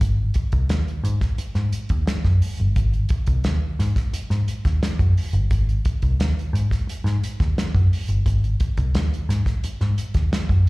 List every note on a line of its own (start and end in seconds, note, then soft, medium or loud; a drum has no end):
0.01 0.29 G#1 loud
0.01 kick loud
0.01 closed hi-hat medium
0.34 kick loud
0.34 closed hi-hat medium
0.52 0.67 C2 medium
0.52 kick loud
0.52 closed hi-hat soft
0.69 0.84 D#2 medium
0.69 snare loud
0.69 closed hi-hat medium
0.88 closed hi-hat soft
1.04 1.18 G#2 loud
1.04 closed hi-hat medium
1.21 kick medium
1.21 snare soft
1.21 closed hi-hat medium
1.38 muted picked electric bass stroke soft
1.38 closed hi-hat medium
1.55 1.70 G#2 loud
1.55 snare soft
1.55 closed hi-hat soft
1.72 closed hi-hat medium
1.89 2.04 D#2 medium
1.89 kick medium
1.89 closed hi-hat medium
2.07 muted picked electric bass stroke soft
2.07 snare loud
2.07 closed hi-hat medium
2.25 2.39 F#2 medium
2.25 kick medium
2.25 snare soft
2.25 closed hi-hat soft
2.42 open hi-hat medium
2.57 2.74 G1 loud
2.57 closed hi-hat soft
2.76 3.04 G#1 loud
2.76 kick loud
2.76 closed hi-hat medium
2.93 closed hi-hat soft
3.09 kick loud
3.09 closed hi-hat medium
3.27 3.42 C2 medium
3.27 kick loud
3.27 closed hi-hat medium
3.44 3.59 D#2 medium
3.44 snare loud
3.44 closed hi-hat medium
3.79 3.93 G#2 medium
3.79 snare soft
3.79 closed hi-hat medium
3.96 kick loud
3.96 snare soft
3.96 closed hi-hat medium
4.13 muted picked electric bass stroke soft
4.13 closed hi-hat medium
4.30 4.45 G#2 medium
4.30 snare soft
4.30 closed hi-hat soft
4.48 closed hi-hat medium
4.65 4.79 D#2 medium
4.65 kick medium
4.65 snare soft
4.65 closed hi-hat soft
4.83 muted picked electric bass stroke soft
4.83 snare loud
4.83 closed hi-hat medium
4.99 5.14 F#2 medium
4.99 kick medium
4.99 closed hi-hat soft
5.17 open hi-hat medium
5.33 5.47 G1 loud
5.33 closed hi-hat soft
5.51 5.79 G#1 loud
5.51 kick loud
5.51 closed hi-hat medium
5.69 closed hi-hat soft
5.85 kick loud
5.85 closed hi-hat medium
6.02 6.17 C2 medium
6.02 kick medium
6.02 closed hi-hat medium
6.20 6.34 D#2 medium
6.20 snare loud
6.20 closed hi-hat medium
6.39 closed hi-hat soft
6.53 6.68 G#2 loud
6.53 closed hi-hat medium
6.71 kick medium
6.71 snare soft
6.71 closed hi-hat medium
6.87 muted picked electric bass stroke soft
6.87 closed hi-hat medium
7.04 7.19 G#2 medium
7.04 snare soft
7.04 closed hi-hat soft
7.24 closed hi-hat medium
7.40 7.54 D#2 loud
7.40 kick medium
7.40 snare soft
7.40 closed hi-hat medium
7.57 muted picked electric bass stroke soft
7.57 snare loud
7.57 closed hi-hat medium
7.75 7.88 F#2 medium
7.75 kick medium
7.75 closed hi-hat soft
7.93 open hi-hat medium
8.08 8.23 G1 medium
8.08 closed hi-hat soft
8.26 8.54 G#1 loud
8.26 kick loud
8.26 closed hi-hat medium
8.44 closed hi-hat soft
8.60 kick loud
8.60 closed hi-hat medium
8.77 8.91 C2 medium
8.77 kick loud
8.77 closed hi-hat medium
8.95 9.09 D#2 medium
8.95 snare loud
8.95 closed hi-hat medium
9.14 closed hi-hat soft
9.29 9.43 G#2 medium
9.29 snare soft
9.29 closed hi-hat medium
9.46 kick medium
9.46 snare soft
9.46 closed hi-hat medium
9.64 muted picked electric bass stroke soft
9.64 closed hi-hat medium
9.81 9.95 G#2 medium
9.81 snare soft
9.81 closed hi-hat soft
9.98 closed hi-hat medium
10.14 10.29 D#2 medium
10.14 kick medium
10.14 snare soft
10.14 closed hi-hat medium
10.32 muted picked electric bass stroke soft
10.32 snare loud
10.32 closed hi-hat loud
10.49 10.63 F#2 medium
10.49 kick medium
10.49 closed hi-hat soft